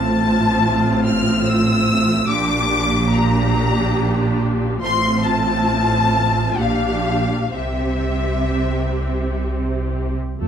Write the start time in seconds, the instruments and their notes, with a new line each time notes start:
Already playing: double bass section A1, cello section A2, viola section C4 F4, violin section A5
1.06 violin section F6
1.45 violin section E6
2.28 double bass section A#1, cello section A#2, viola section D4 G4, violin section D6
3.13 viola section D4 G4, violin section A#5
4.82 double bass section A1, cello section A2, viola section C4 F4, violin section C6
5.25 violin section A5
6.59 double bass section A#1, cello section A#2, viola section D4 G4, violin section F5
7.53 double bass section C2, cello section C3, viola section C4 G4, violin section E5
10.40 double bass section F2, viola section A3 A4